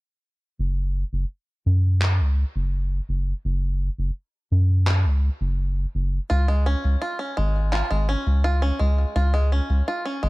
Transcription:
0, 0, Header, 1, 4, 480
1, 0, Start_track
1, 0, Tempo, 714286
1, 396, Time_signature, 4, 2, 24, 8
1, 6916, End_track
2, 0, Start_track
2, 0, Title_t, "Five-string banjo"
2, 0, Program_c, 0, 105
2, 4232, Note_on_c, 0, 65, 69
2, 4348, Note_off_c, 0, 65, 0
2, 4357, Note_on_c, 0, 56, 65
2, 4465, Note_off_c, 0, 56, 0
2, 4477, Note_on_c, 0, 61, 65
2, 4705, Note_off_c, 0, 61, 0
2, 4714, Note_on_c, 0, 65, 70
2, 4823, Note_off_c, 0, 65, 0
2, 4832, Note_on_c, 0, 61, 63
2, 4942, Note_off_c, 0, 61, 0
2, 4953, Note_on_c, 0, 56, 63
2, 5183, Note_off_c, 0, 56, 0
2, 5191, Note_on_c, 0, 65, 70
2, 5308, Note_off_c, 0, 65, 0
2, 5312, Note_on_c, 0, 56, 71
2, 5422, Note_off_c, 0, 56, 0
2, 5435, Note_on_c, 0, 61, 72
2, 5664, Note_off_c, 0, 61, 0
2, 5674, Note_on_c, 0, 65, 77
2, 5783, Note_off_c, 0, 65, 0
2, 5794, Note_on_c, 0, 61, 73
2, 5903, Note_off_c, 0, 61, 0
2, 5910, Note_on_c, 0, 56, 62
2, 6141, Note_off_c, 0, 56, 0
2, 6154, Note_on_c, 0, 65, 76
2, 6269, Note_off_c, 0, 65, 0
2, 6275, Note_on_c, 0, 56, 67
2, 6383, Note_off_c, 0, 56, 0
2, 6399, Note_on_c, 0, 61, 65
2, 6626, Note_off_c, 0, 61, 0
2, 6638, Note_on_c, 0, 65, 75
2, 6745, Note_off_c, 0, 65, 0
2, 6757, Note_on_c, 0, 61, 65
2, 6865, Note_off_c, 0, 61, 0
2, 6873, Note_on_c, 0, 56, 62
2, 6916, Note_off_c, 0, 56, 0
2, 6916, End_track
3, 0, Start_track
3, 0, Title_t, "Analog synth bass"
3, 0, Program_c, 1, 38
3, 399, Note_on_c, 1, 30, 88
3, 698, Note_off_c, 1, 30, 0
3, 757, Note_on_c, 1, 30, 76
3, 840, Note_off_c, 1, 30, 0
3, 1117, Note_on_c, 1, 42, 92
3, 1477, Note_on_c, 1, 37, 93
3, 1487, Note_off_c, 1, 42, 0
3, 1642, Note_off_c, 1, 37, 0
3, 1718, Note_on_c, 1, 30, 84
3, 2017, Note_off_c, 1, 30, 0
3, 2076, Note_on_c, 1, 30, 75
3, 2242, Note_off_c, 1, 30, 0
3, 2318, Note_on_c, 1, 30, 96
3, 2618, Note_off_c, 1, 30, 0
3, 2677, Note_on_c, 1, 30, 71
3, 2760, Note_off_c, 1, 30, 0
3, 3036, Note_on_c, 1, 42, 91
3, 3393, Note_on_c, 1, 37, 86
3, 3403, Note_off_c, 1, 42, 0
3, 3560, Note_off_c, 1, 37, 0
3, 3635, Note_on_c, 1, 30, 84
3, 3936, Note_off_c, 1, 30, 0
3, 3998, Note_on_c, 1, 30, 80
3, 4163, Note_off_c, 1, 30, 0
3, 4240, Note_on_c, 1, 37, 94
3, 4538, Note_off_c, 1, 37, 0
3, 4601, Note_on_c, 1, 37, 74
3, 4681, Note_off_c, 1, 37, 0
3, 4960, Note_on_c, 1, 32, 97
3, 5259, Note_off_c, 1, 32, 0
3, 5316, Note_on_c, 1, 32, 88
3, 5482, Note_off_c, 1, 32, 0
3, 5556, Note_on_c, 1, 37, 88
3, 5857, Note_off_c, 1, 37, 0
3, 5916, Note_on_c, 1, 37, 83
3, 6082, Note_off_c, 1, 37, 0
3, 6155, Note_on_c, 1, 37, 92
3, 6456, Note_off_c, 1, 37, 0
3, 6518, Note_on_c, 1, 37, 75
3, 6600, Note_off_c, 1, 37, 0
3, 6877, Note_on_c, 1, 32, 96
3, 6916, Note_off_c, 1, 32, 0
3, 6916, End_track
4, 0, Start_track
4, 0, Title_t, "Drums"
4, 1355, Note_on_c, 9, 39, 60
4, 1422, Note_off_c, 9, 39, 0
4, 3272, Note_on_c, 9, 39, 70
4, 3339, Note_off_c, 9, 39, 0
4, 5194, Note_on_c, 9, 39, 66
4, 5261, Note_off_c, 9, 39, 0
4, 6916, End_track
0, 0, End_of_file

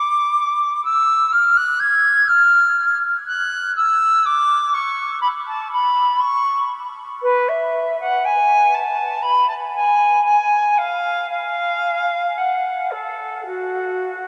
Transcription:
0, 0, Header, 1, 2, 480
1, 0, Start_track
1, 0, Key_signature, 3, "minor"
1, 0, Tempo, 974026
1, 1611, Time_signature, 4, 2, 24, 8
1, 3059, Tempo, 1006711
1, 4499, Tempo, 1038062
1, 5459, Tempo, 1069519
1, 6793, End_track
2, 0, Start_track
2, 0, Title_t, "Flute"
2, 0, Program_c, 0, 73
2, 0, Note_on_c, 0, 86, 90
2, 413, Note_off_c, 0, 86, 0
2, 416, Note_on_c, 0, 88, 93
2, 651, Note_on_c, 0, 89, 93
2, 658, Note_off_c, 0, 88, 0
2, 772, Note_on_c, 0, 90, 92
2, 780, Note_off_c, 0, 89, 0
2, 885, Note_on_c, 0, 92, 99
2, 893, Note_off_c, 0, 90, 0
2, 1123, Note_on_c, 0, 89, 95
2, 1130, Note_off_c, 0, 92, 0
2, 1474, Note_off_c, 0, 89, 0
2, 1611, Note_on_c, 0, 90, 101
2, 1834, Note_off_c, 0, 90, 0
2, 1854, Note_on_c, 0, 88, 100
2, 2097, Note_on_c, 0, 86, 108
2, 2104, Note_off_c, 0, 88, 0
2, 2335, Note_on_c, 0, 85, 94
2, 2342, Note_off_c, 0, 86, 0
2, 2565, Note_off_c, 0, 85, 0
2, 2568, Note_on_c, 0, 83, 96
2, 2597, Note_off_c, 0, 83, 0
2, 2697, Note_on_c, 0, 81, 77
2, 2813, Note_off_c, 0, 81, 0
2, 2816, Note_on_c, 0, 83, 88
2, 3057, Note_on_c, 0, 85, 93
2, 3064, Note_off_c, 0, 83, 0
2, 3295, Note_off_c, 0, 85, 0
2, 3542, Note_on_c, 0, 71, 94
2, 3668, Note_on_c, 0, 76, 79
2, 3675, Note_off_c, 0, 71, 0
2, 3909, Note_off_c, 0, 76, 0
2, 3912, Note_on_c, 0, 78, 92
2, 4032, Note_on_c, 0, 80, 94
2, 4039, Note_off_c, 0, 78, 0
2, 4267, Note_on_c, 0, 81, 80
2, 4274, Note_off_c, 0, 80, 0
2, 4497, Note_on_c, 0, 83, 93
2, 4504, Note_off_c, 0, 81, 0
2, 4614, Note_off_c, 0, 83, 0
2, 4616, Note_on_c, 0, 81, 73
2, 4644, Note_off_c, 0, 81, 0
2, 4735, Note_on_c, 0, 80, 87
2, 4966, Note_off_c, 0, 80, 0
2, 4968, Note_on_c, 0, 80, 80
2, 5215, Note_on_c, 0, 77, 79
2, 5222, Note_off_c, 0, 80, 0
2, 5453, Note_off_c, 0, 77, 0
2, 5456, Note_on_c, 0, 77, 87
2, 5939, Note_on_c, 0, 78, 69
2, 5946, Note_off_c, 0, 77, 0
2, 6180, Note_on_c, 0, 69, 66
2, 6187, Note_off_c, 0, 78, 0
2, 6421, Note_off_c, 0, 69, 0
2, 6423, Note_on_c, 0, 66, 73
2, 6793, Note_off_c, 0, 66, 0
2, 6793, End_track
0, 0, End_of_file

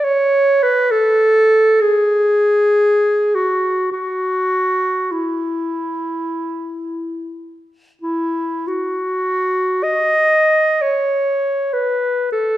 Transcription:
0, 0, Header, 1, 2, 480
1, 0, Start_track
1, 0, Tempo, 884956
1, 28, Time_signature, 4, 2, 24, 8
1, 988, Tempo, 1001669
1, 1468, Tempo, 1094891
1, 1948, Tempo, 1174168
1, 2908, Tempo, 1104972
1, 3388, Tempo, 1293103
1, 3868, Tempo, 1160542
1, 4348, Tempo, 983607
1, 4828, Tempo, 930233
1, 5308, Tempo, 877193
1, 5765, End_track
2, 0, Start_track
2, 0, Title_t, "Clarinet"
2, 0, Program_c, 0, 71
2, 24, Note_on_c, 0, 73, 79
2, 341, Note_on_c, 0, 71, 69
2, 350, Note_off_c, 0, 73, 0
2, 496, Note_on_c, 0, 69, 74
2, 504, Note_off_c, 0, 71, 0
2, 982, Note_on_c, 0, 68, 79
2, 990, Note_off_c, 0, 69, 0
2, 1700, Note_on_c, 0, 66, 59
2, 1707, Note_off_c, 0, 68, 0
2, 1945, Note_off_c, 0, 66, 0
2, 1948, Note_on_c, 0, 66, 64
2, 2438, Note_on_c, 0, 64, 49
2, 2444, Note_off_c, 0, 66, 0
2, 3389, Note_off_c, 0, 64, 0
2, 3628, Note_on_c, 0, 64, 54
2, 3873, Note_on_c, 0, 66, 60
2, 3880, Note_off_c, 0, 64, 0
2, 4353, Note_on_c, 0, 75, 73
2, 4360, Note_off_c, 0, 66, 0
2, 4833, Note_on_c, 0, 73, 57
2, 4841, Note_off_c, 0, 75, 0
2, 5305, Note_on_c, 0, 71, 62
2, 5313, Note_off_c, 0, 73, 0
2, 5623, Note_off_c, 0, 71, 0
2, 5626, Note_on_c, 0, 69, 54
2, 5765, Note_off_c, 0, 69, 0
2, 5765, End_track
0, 0, End_of_file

